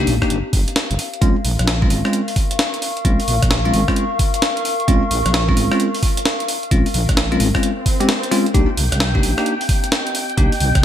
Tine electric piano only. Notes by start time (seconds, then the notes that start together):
0.00 A#3 D4 D#4 G4
0.22 A#3 D4 D#4 G4
1.21 G#3 C4 C#4 F4
1.82 G#3 C4 C#4 F4
2.05 G#3 C4 C#4 F4
3.05 G#3 C4 C#4 F4
3.65 G#3 C4 C#4 F4
3.88 G#3 C4 C#4 F4
4.88 G#3 C4 C#4 F4
5.49 G#3 C4 C#4 F4
5.72 G#3 C4 C#4 F4
6.71 G#3 C4 C#4 F4
7.32 G#3 C4 C#4 F4
7.55 G#3 C4 C#4 F4
8.00 G#3 C4 C#4 G4
8.31 G#3 C4 C#4 F4
8.54 A#3 D4 D#4 G4
9.15 A#3 D4 D#4 G4
9.38 A#3 D4 D#4 G4
10.38 A#3 D4 D#4 G4